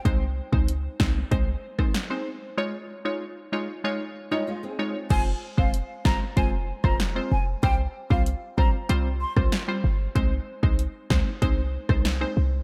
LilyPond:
<<
  \new Staff \with { instrumentName = "Flute" } { \time 4/4 \key f \minor \tempo 4 = 95 r1 | r1 | aes''16 r8 f''16 r8 bes''16 r16 aes''16 r8 bes''16 r8 aes''16 r16 | g''16 r8 f''16 r8 bes''16 r8. c'''16 r4 r16 |
r1 | }
  \new Staff \with { instrumentName = "Synth stab" } { \time 4/4 \key f \minor <aes c' ees' c''>16 r8 <aes c' ees' c''>16 r8 <aes c' ees' c''>16 r16 <aes c' ees' c''>16 r8 <aes c' ees' c''>16 r16 <aes c' ees' c''>16 r8 | <aes ees' f' des''>16 r8 <aes ees' f' des''>16 r8 <aes ees' f' des''>16 r16 <aes ees' f' des''>16 r8 <aes ees' f' des''>16 r8 <aes ees' f' des''>16 r16 | <aes c' f' c''>16 r8 <aes c' f' c''>16 r8 <aes c' f' c''>16 r16 <aes c' f' c''>16 r8 <aes c' f' c''>16 r16 <aes c' f' c''>16 r8 | <g c' f' c''>16 r8 <g c' f' c''>16 r8 <g c' f' c''>16 r16 <g c' f' c''>16 r8 <g c' f' c''>16 r16 <g c' f' c''>16 r8 |
<aes c' ees' c''>16 r8 <aes c' ees' c''>16 r8 <aes c' ees' c''>16 r16 <aes c' ees' c''>16 r8 <aes c' ees' c''>16 r16 <aes c' ees' c''>16 r8 | }
  \new Staff \with { instrumentName = "Nylon-string guitar" } { \time 4/4 \key f \minor r1 | r2 r8. <g ees'>16 <aes f'>16 <c' aes'>8. | r1 | r1 |
r1 | }
  \new Staff \with { instrumentName = "808-style bass" } { \clef bass \time 4/4 \key f \minor c,8. des,8. c,8 c,8 r4. | r1 | f,,8 r16 f,,8 r16 g,,16 r16 f,,8. f,,8. f,,8 | c,8 r16 c,8 r16 bes,,16 r16 c,8. c,16 r8 g,,8 |
c,8 r16 c,8 r16 des,16 r16 c,8. c,8. c,8 | }
  \new DrumStaff \with { instrumentName = "Drums" } \drummode { \time 4/4 <hh bd>8. bd16 hh8 <bd sn>8 <hh bd>8. <bd ss>16 <hh sn>4 | r4 r4 r4 r4 | <cymc hh bd>8. bd16 hh8 <bd sn>8 <hh bd>8. <bd ss>16 <hh sn>4 | <hh bd>8. bd16 hh8 bd8 hh8. <bd ss>16 <hh sn>4 |
<hh bd>8. bd16 hh8 <bd sn>8 <hh bd>8. <bd ss>16 <hh sn>4 | }
>>